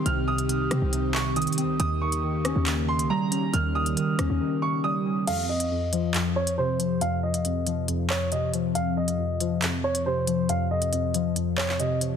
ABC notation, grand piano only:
X:1
M:4/4
L:1/8
Q:1/4=138
K:Ebmix
V:1 name="Grand piano"
f' e'3 z d' e' z | e' d'3 z c' b2 | f' e'3 z d' e' z | f e3 z d c2 |
f e3 z d e z | f e3 z d c2 | f e3 z d e z |]